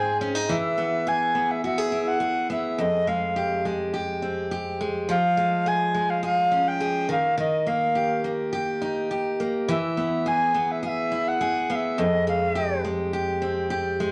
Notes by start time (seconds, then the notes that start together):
Already playing: G#2 C4 G#4 G#5
0.21 C#4
0.35 D#4
0.49 E3 E5
0.78 B3
1.07 G#4 G#5
1.35 B3
1.51 E5
1.64 F#4 E5
1.78 G#4
1.92 E4
2.08 F#5
2.20 G#4
2.50 B3 E5
2.79 F2 D#5
3.07 G#3 F5
3.36 G4
3.65 G#3
3.94 G4
4.22 C4
4.51 G4
4.81 G#3
5.09 F3 F5
5.37 G#3
5.66 G#4 G#5
5.94 G#3
6.10 F5
6.23 G#4 F5
6.52 C#4
6.68 G5
6.80 G#4
7.09 D#3 F5
7.38 D#3 D#5
7.66 A#3 F5
7.95 G4
8.24 A#3
8.53 G4
8.82 D#4
9.11 G4
9.40 A#3
9.69 E3 E5
9.97 B3
10.26 G#4 G#5
10.54 B3
10.71 E5
10.83 G#4 F5
10.89 E5
11.12 E4
11.28 F#5
11.41 G#4
11.70 B3 F5
11.75 E5
11.98 F2 D#5
12.27 G#3 F5
12.55 G4
12.85 G#3
13.13 G4
13.42 C4
13.70 G4
14.00 G#3